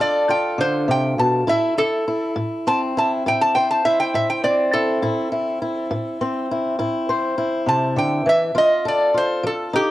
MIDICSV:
0, 0, Header, 1, 3, 480
1, 0, Start_track
1, 0, Key_signature, 0, "minor"
1, 0, Tempo, 590551
1, 1190, Time_signature, 12, 3, 24, 8
1, 8054, End_track
2, 0, Start_track
2, 0, Title_t, "Resonator guitar played with a steel bar"
2, 0, Program_c, 0, 25
2, 8, Note_on_c, 0, 74, 83
2, 232, Note_off_c, 0, 74, 0
2, 247, Note_on_c, 0, 79, 83
2, 472, Note_off_c, 0, 79, 0
2, 493, Note_on_c, 0, 72, 94
2, 715, Note_off_c, 0, 72, 0
2, 738, Note_on_c, 0, 79, 88
2, 957, Note_off_c, 0, 79, 0
2, 971, Note_on_c, 0, 81, 86
2, 1193, Note_off_c, 0, 81, 0
2, 1214, Note_on_c, 0, 76, 98
2, 1435, Note_off_c, 0, 76, 0
2, 1450, Note_on_c, 0, 69, 111
2, 1905, Note_off_c, 0, 69, 0
2, 2174, Note_on_c, 0, 81, 99
2, 2279, Note_off_c, 0, 81, 0
2, 2425, Note_on_c, 0, 81, 81
2, 2524, Note_off_c, 0, 81, 0
2, 2667, Note_on_c, 0, 79, 96
2, 2765, Note_off_c, 0, 79, 0
2, 2776, Note_on_c, 0, 81, 96
2, 2879, Note_off_c, 0, 81, 0
2, 2885, Note_on_c, 0, 79, 96
2, 2994, Note_off_c, 0, 79, 0
2, 3013, Note_on_c, 0, 81, 82
2, 3118, Note_off_c, 0, 81, 0
2, 3130, Note_on_c, 0, 76, 89
2, 3237, Note_off_c, 0, 76, 0
2, 3250, Note_on_c, 0, 79, 96
2, 3356, Note_off_c, 0, 79, 0
2, 3374, Note_on_c, 0, 76, 92
2, 3478, Note_off_c, 0, 76, 0
2, 3493, Note_on_c, 0, 79, 91
2, 3598, Note_off_c, 0, 79, 0
2, 3609, Note_on_c, 0, 74, 84
2, 3832, Note_off_c, 0, 74, 0
2, 3848, Note_on_c, 0, 69, 97
2, 5246, Note_off_c, 0, 69, 0
2, 6247, Note_on_c, 0, 81, 89
2, 6471, Note_off_c, 0, 81, 0
2, 6490, Note_on_c, 0, 79, 89
2, 6713, Note_off_c, 0, 79, 0
2, 6739, Note_on_c, 0, 76, 98
2, 6958, Note_off_c, 0, 76, 0
2, 6974, Note_on_c, 0, 75, 108
2, 7195, Note_off_c, 0, 75, 0
2, 7220, Note_on_c, 0, 74, 91
2, 7439, Note_off_c, 0, 74, 0
2, 7458, Note_on_c, 0, 72, 98
2, 7678, Note_off_c, 0, 72, 0
2, 7695, Note_on_c, 0, 69, 89
2, 7916, Note_off_c, 0, 69, 0
2, 7930, Note_on_c, 0, 67, 107
2, 8054, Note_off_c, 0, 67, 0
2, 8054, End_track
3, 0, Start_track
3, 0, Title_t, "Steel-string acoustic guitar"
3, 0, Program_c, 1, 25
3, 0, Note_on_c, 1, 50, 65
3, 0, Note_on_c, 1, 62, 59
3, 0, Note_on_c, 1, 65, 59
3, 0, Note_on_c, 1, 69, 69
3, 184, Note_off_c, 1, 50, 0
3, 225, Note_off_c, 1, 65, 0
3, 235, Note_on_c, 1, 65, 52
3, 472, Note_on_c, 1, 50, 62
3, 711, Note_off_c, 1, 50, 0
3, 715, Note_on_c, 1, 48, 67
3, 953, Note_off_c, 1, 48, 0
3, 961, Note_on_c, 1, 47, 56
3, 1162, Note_off_c, 1, 62, 0
3, 1163, Note_off_c, 1, 65, 0
3, 1193, Note_off_c, 1, 47, 0
3, 1196, Note_on_c, 1, 45, 75
3, 1202, Note_on_c, 1, 64, 67
3, 1441, Note_off_c, 1, 64, 0
3, 1444, Note_on_c, 1, 64, 54
3, 1625, Note_off_c, 1, 45, 0
3, 1685, Note_off_c, 1, 64, 0
3, 1688, Note_on_c, 1, 64, 51
3, 1916, Note_on_c, 1, 45, 78
3, 2169, Note_on_c, 1, 60, 58
3, 2345, Note_off_c, 1, 45, 0
3, 2412, Note_off_c, 1, 64, 0
3, 2415, Note_on_c, 1, 64, 58
3, 2652, Note_on_c, 1, 45, 75
3, 2653, Note_off_c, 1, 64, 0
3, 2657, Note_on_c, 1, 64, 53
3, 2871, Note_off_c, 1, 69, 0
3, 2893, Note_on_c, 1, 72, 63
3, 3072, Note_off_c, 1, 45, 0
3, 3123, Note_off_c, 1, 64, 0
3, 3131, Note_on_c, 1, 64, 52
3, 3366, Note_on_c, 1, 45, 70
3, 3602, Note_off_c, 1, 60, 0
3, 3606, Note_on_c, 1, 60, 62
3, 3790, Note_off_c, 1, 45, 0
3, 3840, Note_off_c, 1, 64, 0
3, 3850, Note_on_c, 1, 64, 54
3, 4076, Note_off_c, 1, 64, 0
3, 4083, Note_on_c, 1, 45, 74
3, 4086, Note_on_c, 1, 64, 62
3, 4313, Note_off_c, 1, 64, 0
3, 4322, Note_on_c, 1, 64, 53
3, 4508, Note_off_c, 1, 45, 0
3, 4556, Note_off_c, 1, 64, 0
3, 4566, Note_on_c, 1, 64, 49
3, 4801, Note_on_c, 1, 45, 83
3, 5044, Note_off_c, 1, 60, 0
3, 5047, Note_on_c, 1, 60, 62
3, 5227, Note_off_c, 1, 45, 0
3, 5278, Note_off_c, 1, 64, 0
3, 5294, Note_on_c, 1, 64, 57
3, 5511, Note_off_c, 1, 64, 0
3, 5517, Note_on_c, 1, 45, 72
3, 5520, Note_on_c, 1, 64, 56
3, 5738, Note_off_c, 1, 72, 0
3, 5764, Note_on_c, 1, 72, 62
3, 5945, Note_off_c, 1, 45, 0
3, 5987, Note_off_c, 1, 64, 0
3, 5997, Note_on_c, 1, 64, 54
3, 6229, Note_on_c, 1, 48, 52
3, 6469, Note_off_c, 1, 48, 0
3, 6473, Note_on_c, 1, 50, 67
3, 6709, Note_off_c, 1, 50, 0
3, 6712, Note_on_c, 1, 52, 61
3, 6928, Note_off_c, 1, 72, 0
3, 6943, Note_off_c, 1, 52, 0
3, 6947, Note_off_c, 1, 64, 0
3, 6947, Note_on_c, 1, 53, 69
3, 6950, Note_on_c, 1, 65, 59
3, 7195, Note_on_c, 1, 69, 56
3, 7381, Note_off_c, 1, 53, 0
3, 7421, Note_off_c, 1, 65, 0
3, 7430, Note_on_c, 1, 65, 45
3, 7668, Note_on_c, 1, 53, 74
3, 7909, Note_off_c, 1, 60, 0
3, 7912, Note_on_c, 1, 63, 61
3, 8054, Note_off_c, 1, 53, 0
3, 8054, Note_off_c, 1, 63, 0
3, 8054, Note_off_c, 1, 65, 0
3, 8054, Note_off_c, 1, 69, 0
3, 8054, End_track
0, 0, End_of_file